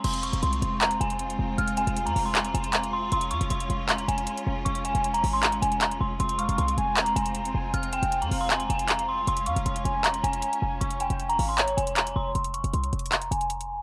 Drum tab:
CC |x-----------------------------------------------|------------------------------------------------|------------------------------------------------|------------------------------------------------|
HH |x--x--x--x--x--x--x-----x--x--x--x--x--x--------|x--x--x--x--x--x--o-----x--x--x--x--x--x--------|x--x--x--x--x--x--x-----x--x--x--x--x--x--------|x--x--x--x--x--x--o-----x--x--x--x--x--x--------|
CP |------------------------x-----------------------|------------------------x-----------x-----------|------------------------x-----------------------|------------------------x-----------x-----------|

CC |------------------------------------------------|------------------------------------------------|------------------------------------------------|------------------------------------------------|
HH |x--x--x--x--x--x--x-----x--x--x--x--x--x--------|x--x--x--x--x--x--o-----x--x--x--x--x--x--------|x--x--x--x--x--x--x-----x--x--x--x--x--x--------|x--x--x--x--x--x--o-----x--x--x--x--x--x--------|
CP |------------------------x-----------------------|------------------------x-----------x-----------|------------------------x-----------------------|------------------------x-----------x-----------|

CC |------------------------------------------------|
HH |x--x--x--x--x--x--x-x-x-x--x--x--x--x--x--------|
CP |------------------------x-----------------------|